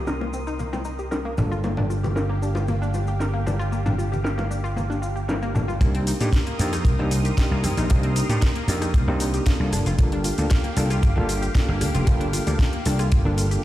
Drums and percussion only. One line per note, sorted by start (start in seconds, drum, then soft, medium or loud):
0.07 snare loud
0.07 cabasa soft
0.21 high bongo soft
0.33 cabasa medium
0.47 closed hi-hat medium
0.47 cabasa soft
0.59 closed hi-hat soft
0.59 high conga medium
0.59 cabasa soft
0.73 high bongo medium
0.73 cabasa soft
0.85 cabasa medium
0.99 closed hi-hat medium
0.99 cabasa soft
1.12 snare loud
1.12 high bongo soft
1.12 cabasa soft
1.38 high conga medium
1.38 low conga medium
1.38 cabasa medium
1.52 cabasa soft
1.64 high bongo medium
1.64 cabasa soft
1.77 low conga medium
1.90 cabasa medium
2.03 closed hi-hat medium
2.03 high bongo medium
2.03 high conga medium
2.03 cabasa soft
2.16 snare loud
2.16 closed hi-hat soft
2.16 cabasa soft
2.43 cabasa medium
2.55 closed hi-hat medium
2.55 high bongo medium
2.55 cabasa soft
2.68 closed hi-hat soft
2.68 high conga medium
2.68 cabasa soft
2.83 cabasa soft
2.94 high bongo soft
2.94 cabasa medium
3.07 closed hi-hat medium
3.07 cabasa soft
3.20 snare loud
3.20 closed hi-hat medium
3.20 cabasa medium
3.46 high bongo medium
3.46 high conga medium
3.46 cabasa medium
3.59 closed hi-hat medium
3.59 cabasa soft
3.72 closed hi-hat soft
3.72 cabasa medium
3.86 high bongo medium
3.86 low conga medium
3.86 cabasa soft
3.99 cabasa medium
4.12 closed hi-hat medium
4.12 high conga medium
4.12 cabasa soft
4.24 snare loud
4.24 closed hi-hat soft
4.24 cabasa soft
4.38 high bongo medium
4.38 cabasa soft
4.51 cabasa medium
4.64 closed hi-hat medium
4.64 cabasa soft
4.76 closed hi-hat soft
4.76 high bongo soft
4.76 high conga medium
4.76 cabasa medium
4.90 snare soft
4.90 cabasa soft
5.03 cabasa medium
5.16 closed hi-hat medium
5.16 cabasa soft
5.29 snare loud
5.29 closed hi-hat soft
5.29 high bongo medium
5.29 cabasa soft
5.42 cabasa soft
5.55 high conga medium
5.55 low conga medium
5.55 cabasa medium
5.69 closed hi-hat medium
5.69 high bongo soft
5.69 cabasa soft
5.81 kick loud
5.81 closed hi-hat medium
5.81 shaker soft
5.95 closed hi-hat soft
6.07 open hi-hat loud
6.07 shaker medium
6.21 closed hi-hat medium
6.21 shaker soft
6.33 kick loud
6.33 snare loud
6.33 closed hi-hat medium
6.47 closed hi-hat soft
6.59 open hi-hat loud
6.59 shaker medium
6.73 cross-stick medium
6.73 closed hi-hat medium
6.73 shaker soft
6.85 kick loud
6.85 closed hi-hat medium
6.85 shaker soft
7.11 open hi-hat loud
7.11 shaker medium
7.25 closed hi-hat medium
7.25 shaker soft
7.38 kick loud
7.38 snare loud
7.38 closed hi-hat medium
7.38 shaker soft
7.64 cross-stick medium
7.64 open hi-hat loud
7.64 shaker medium
7.77 closed hi-hat medium
7.77 shaker soft
7.90 kick loud
7.90 closed hi-hat medium
7.90 shaker soft
8.03 closed hi-hat soft
8.16 open hi-hat loud
8.16 shaker medium
8.29 closed hi-hat medium
8.29 shaker soft
8.42 kick loud
8.42 snare loud
8.42 closed hi-hat medium
8.42 shaker soft
8.56 closed hi-hat soft
8.68 open hi-hat loud
8.68 shaker medium
8.82 cross-stick medium
8.82 closed hi-hat medium
8.82 shaker soft
8.94 kick loud
8.94 closed hi-hat medium
8.94 shaker soft
9.20 open hi-hat loud
9.20 shaker medium
9.34 closed hi-hat medium
9.34 shaker soft
9.46 kick loud
9.46 snare loud
9.46 closed hi-hat medium
9.46 shaker soft
9.73 cross-stick medium
9.73 open hi-hat loud
9.73 shaker medium
9.86 closed hi-hat medium
9.86 shaker soft
9.99 kick loud
9.99 closed hi-hat medium
9.99 shaker soft
10.12 closed hi-hat soft
10.24 open hi-hat loud
10.24 shaker medium
10.38 closed hi-hat medium
10.38 shaker soft
10.50 kick loud
10.50 snare loud
10.50 closed hi-hat medium
10.50 shaker soft
10.64 closed hi-hat soft
10.77 open hi-hat loud
10.77 shaker medium
10.90 cross-stick medium
10.90 closed hi-hat medium
10.90 shaker soft
11.03 kick loud
11.03 closed hi-hat medium
11.03 shaker soft
11.29 open hi-hat loud
11.29 shaker medium
11.43 closed hi-hat soft
11.43 shaker soft
11.55 kick loud
11.55 snare loud
11.55 closed hi-hat medium
11.55 shaker soft
11.81 cross-stick medium
11.81 open hi-hat loud
11.81 shaker medium
11.95 closed hi-hat medium
11.95 shaker soft
12.07 kick loud
12.07 closed hi-hat medium
12.07 shaker soft
12.21 closed hi-hat soft
12.33 open hi-hat loud
12.33 shaker medium
12.47 closed hi-hat soft
12.47 shaker soft
12.59 kick loud
12.59 snare loud
12.59 closed hi-hat medium
12.59 shaker soft
12.73 closed hi-hat soft
12.86 open hi-hat loud
12.86 shaker medium
12.99 cross-stick medium
12.99 closed hi-hat medium
12.99 shaker soft
13.12 kick loud
13.12 closed hi-hat medium
13.12 shaker soft
13.38 open hi-hat loud
13.38 shaker medium
13.51 closed hi-hat medium
13.51 shaker soft